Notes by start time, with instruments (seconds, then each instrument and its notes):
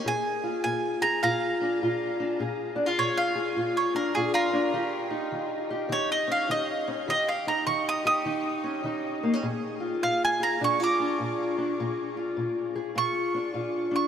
0.05 steel-string acoustic guitar A#2 G#4, mandolin G#5
0.43 steel-string acoustic guitar F4
0.64 steel-string acoustic guitar A#2, mandolin G#5
1.01 steel-string acoustic guitar G#4, mandolin A#5
1.23 steel-string acoustic guitar A#2 F4, mandolin F5 A#5
1.61 steel-string acoustic guitar D4
1.82 steel-string acoustic guitar A#2 F4
2.20 steel-string acoustic guitar D4
2.39 steel-string acoustic guitar A#2 G#4
2.76 steel-string acoustic guitar D4
2.86 steel-string acoustic guitar F4
2.98 steel-string acoustic guitar A#2, mandolin C#5
3.17 mandolin F5
3.35 steel-string acoustic guitar G#4
3.56 steel-string acoustic guitar A#2 F4
3.77 mandolin C#5
3.94 steel-string acoustic guitar D4, mandolin A#4
4.15 steel-string acoustic guitar A#2 F4, mandolin G#4
4.34 mandolin F4 A#4
4.53 steel-string acoustic guitar D4
4.73 steel-string acoustic guitar D#3 G4
5.11 steel-string acoustic guitar D#4
5.31 steel-string acoustic guitar D#3
5.70 steel-string acoustic guitar G4
5.89 steel-string acoustic guitar D#3 D#4, mandolin C#5
6.12 mandolin D#5
6.27 steel-string acoustic guitar C#4
6.32 mandolin F5
6.49 steel-string acoustic guitar D#3 D#4, mandolin D#5
6.88 steel-string acoustic guitar C#4
7.08 steel-string acoustic guitar D#3 G4, mandolin D#5
7.29 mandolin F5
7.47 steel-string acoustic guitar D#4, mandolin A#5
7.66 steel-string acoustic guitar D#3, mandolin C#6
7.89 mandolin D#6
8.05 steel-string acoustic guitar G4, mandolin D#6
8.25 steel-string acoustic guitar D#3 D#4
8.64 steel-string acoustic guitar C#4
8.84 steel-string acoustic guitar D#3 D#4
9.23 steel-string acoustic guitar A#3
9.33 steel-string acoustic guitar C#4
9.42 steel-string acoustic guitar A#2 G#4
9.80 steel-string acoustic guitar F4
10.03 steel-string acoustic guitar A#2, mandolin F5
10.25 mandolin G#5
10.40 steel-string acoustic guitar G#4, mandolin A#5
10.60 steel-string acoustic guitar A#2 D4, mandolin C#6
10.80 steel-string acoustic guitar F4, mandolin A#5
10.84 mandolin D6
11.00 steel-string acoustic guitar D4
11.19 steel-string acoustic guitar A#2 F4
11.58 steel-string acoustic guitar D4
11.80 steel-string acoustic guitar A#2 G#4
12.17 steel-string acoustic guitar F4
12.37 steel-string acoustic guitar A#2
12.76 steel-string acoustic guitar G#4
12.95 steel-string acoustic guitar A#2 F4, mandolin C#6
13.34 steel-string acoustic guitar D4
13.54 steel-string acoustic guitar A#2 F4
13.91 steel-string acoustic guitar D4
13.96 mandolin C#6